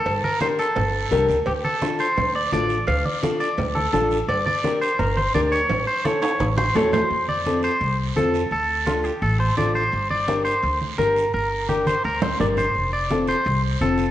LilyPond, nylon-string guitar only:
\new Staff \with { instrumentName = "Nylon-string guitar" } { \time 4/4 \key d \minor \tempo 4 = 170 r4 <d' g' bes'>8 r4. <d' g' bes'>8 r8 | r4 <d' f' a'>8 r4. <d' f' a'>8 r8 | r4 <d' f' a'>8 r4. <d' f' a'>8 r8 | r4 <d' g' bes'>8 r4. <d' g' bes'>8 r8 |
r4 <cis' e' a'>8 r4. <cis' e' a'>8 r8 | r4 <c' f' a'>8 r4. <c' f' a'>8 r8 | r4 <d' f' a'>8 r4. <d' f' a'>8 r8 | r4 <d' g' bes'>8 r4. <d' g' bes'>8 r8 |
r4 <d' g' bes'>8 r4. <d' g' bes'>8 r8 | r4 <c' f' a'>8 r4. <c' f' a'>8 r8 | }